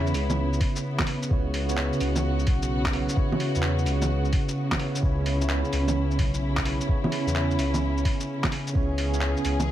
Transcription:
Already playing: E2 C#3 B3 E4 C#5
0.07 shaker
0.14 C#2, open hi-hat, shaker
0.30 low bongo, shaker
0.53 shaker
0.61 kick, open hi-hat
0.76 shaker
0.99 kick, clap, low bongo
1.07 open hi-hat
1.23 shaker
1.29 C#2 C#3 B3 E4 F#4 C#5, kick
1.54 open hi-hat
1.68 C#3 B3 E4 C#5, shaker
1.77 clap
1.93 shaker
2.00 C#2, open hi-hat, shaker
2.16 low bongo, shaker
2.39 shaker
2.47 B1, kick, open hi-hat
2.62 shaker
2.86 kick, clap
2.92 C#3 B3 E4, open hi-hat
2.96 C#5
3.09 shaker
3.14 C#3 B3 E4, kick
3.18 C#5
3.32 low bongo
3.40 open hi-hat
3.50 C#3 B3
3.55 E2 E4 C#5, shaker
3.62 clap
3.78 shaker
3.86 C#2, open hi-hat, shaker
4.02 low bongo, shaker
4.25 shaker
4.33 kick, open hi-hat
4.49 shaker
4.72 kick, clap, low bongo
4.77 C#3 B3 E4 C#5, open hi-hat
4.95 shaker
5.01 C#2 C#3 B3 C#4 E4, kick
5.05 E4 C#5
5.26 open hi-hat
5.40 C#3 B3 E4 C#5, shaker
5.49 clap
5.65 shaker
5.73 C#2, open hi-hat, shaker
5.88 low bongo, shaker
6.11 shaker
6.19 B1, kick, open hi-hat
6.34 shaker
6.57 kick, clap
6.64 C#3 B3 E4, open hi-hat
6.69 C#5
6.81 shaker
6.87 C#3 B3 E4, kick
6.91 C#5
7.04 low bongo
7.12 open hi-hat
7.24 E2 C#3 B3, shaker
7.30 E4 C#5
7.36 clap
7.51 shaker
7.59 C#2, open hi-hat, shaker
7.74 low bongo, shaker
7.97 shaker
8.05 kick, open hi-hat
8.20 shaker
8.44 kick, clap, low bongo
8.52 open hi-hat
8.67 shaker
8.73 C#2 C#3 B3 E4 G#4 C#5, kick
8.98 open hi-hat
9.12 C#3 B3 E4 C#5, shaker
9.21 clap
9.37 shaker
9.45 C#2, open hi-hat, shaker
9.60 low bongo, shaker

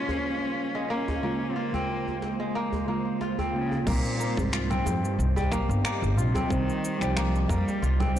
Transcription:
Already playing: C#3 G3 G#3 A#3 C4 C#4 F4 G4 C5 D#5 F5
0.09 C5, djembe bass
0.75 G#3
0.90 A#3 C#4
1.08 djembe slap, djembe tone, djembe bass
1.22 C#3 G#3 A#3 F4
1.56 A#3 F4
1.72 C#3 G#3 A#3 C4, djembe tone, djembe bass
1.76 F4
2.07 djembe tone
2.22 G#3, djembe slap
2.40 G#3
2.55 A#3
2.73 djembe bass
2.87 C#3 G#3 A#3 F4
3.21 F4, djembe slap
3.39 C4, djembe bass
3.53 C#3 G#3 A#3 F4
3.72 djembe tone
3.86 C2 A#2 G3 A#3 C4 D#4 G4 C5, kick, crash, low conga, shaker
4.06 shaker
4.20 A#3 D#5, shaker
4.36 C2 G#2 G3 C4 D#4, kick, djembe bass, shaker
4.40 C5
4.53 F4, finger snap, shaker
4.70 C4, low conga, shaker
4.85 F2 G#2, djembe slap, djembe tone, shaker
4.96 G2
5.05 shaker
5.19 C2, shaker
5.36 G3, djembe bass, shaker
5.51 A#3, finger snap, kick, low conga, shaker
5.69 G1, shaker
5.84 A#3, finger snap, shaker
6.02 G1, djembe tone, shaker
6.17 A#1 C3 F4, shaker
6.35 C4, djembe slap, djembe bass, low conga, shaker
6.49 C2 D#3 G3 C4 D#4 C5, kick, shaker
6.69 shaker
6.85 shaker
6.99 C2 F3 G3 C4 D#4, finger snap, shaker
7.03 C5
7.16 A#3, finger snap, low conga, shaker
7.35 shaker
7.49 F2 G3 A#3, kick, djembe slap, djembe tone, shaker
7.68 djembe tone, shaker
7.82 C2 F4, shaker
8.00 C4, low conga, djembe bass, shaker
8.15 G3 C4 D#4

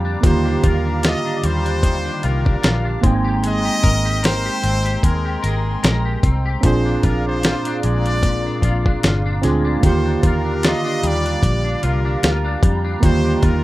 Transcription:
Already playing: F2 D3 G3 A#3 F4 G4 F5 A#5 D6
0.05 D4
0.21 D#2 D3 D#3 A#3 F4, kick, closed hi-hat
0.25 G4 C5
0.46 D4
0.64 D#2 F4 A#4, kick, closed hi-hat
0.85 D4
1.03 F4 D#5, snare, closed hi-hat
1.25 D4
1.43 D#2 G3 C5, closed hi-hat
1.65 D4, closed hi-hat
1.83 D#3, kick, closed hi-hat
2.05 D4
2.23 C2 F4 A#4, closed hi-hat
2.45 D4, kick
2.63 A#1 F4, snare, closed hi-hat
2.85 D4
3.01 G#1 G#3 A#3 C4 D#4 G5 A#5 C6, kick, closed hi-hat
3.06 G5
3.24 G4
3.43 G#3, closed hi-hat
3.47 D#5
3.65 G4
3.83 G#1 A#4, kick, closed hi-hat
4.05 G4
4.23 A#4 C5, snare, closed hi-hat
4.45 G4
4.63 G#1 C4, closed hi-hat
4.85 G4, closed hi-hat
5.03 D#2 G#3 A#4, kick, closed hi-hat
5.25 G4
5.42 G#1 G#4 A#4, closed hi-hat
5.83 A#1 A#4, snare, closed hi-hat
6.05 G4
6.23 C2 C4, kick, closed hi-hat
6.46 G4
6.61 A#1 A#2 C4 D4 F4 G#4 F5 D6, kick, closed hi-hat
6.65 G#4 C5
6.86 D4
7.03 A#1 F4 A#4, kick, closed hi-hat
7.26 D4 C5
7.43 F4, snare, closed hi-hat
7.65 D4, closed hi-hat
7.83 A#1 G#3 D5, closed hi-hat
8.06 D4, closed hi-hat
8.23 A#2, kick, closed hi-hat
8.46 D4
8.62 A#1 F4, kick, closed hi-hat
8.86 D4, kick
9.03 G1 F4, snare, closed hi-hat
9.26 D4
9.42 D2 G#3 C4 D4 F4 G#4, snare, closed hi-hat
9.65 D4
9.81 D#2 D3 D#3 A#3 F4 G4 A#5, kick, closed hi-hat
9.86 G4 C5
10.05 D4
10.23 D#2 F4 A#4, kick, closed hi-hat
10.45 D4
10.63 F4 D#5, snare, closed hi-hat
10.85 D4
11.03 D#2 G3, closed hi-hat
11.07 D5
11.25 D4, closed hi-hat
11.43 A#1, kick, closed hi-hat
11.65 D4
11.83 C2 F4 A#4, closed hi-hat
12.05 D4
12.23 D2 F4, snare, closed hi-hat
12.45 D4
12.63 F2 G3, kick, closed hi-hat
12.85 D4
13.00 D#2 D3 D#3 A#3 F4 C5 C6, kick, closed hi-hat
13.05 G4
13.25 D4
13.43 D#2 F4 A#4, kick, closed hi-hat

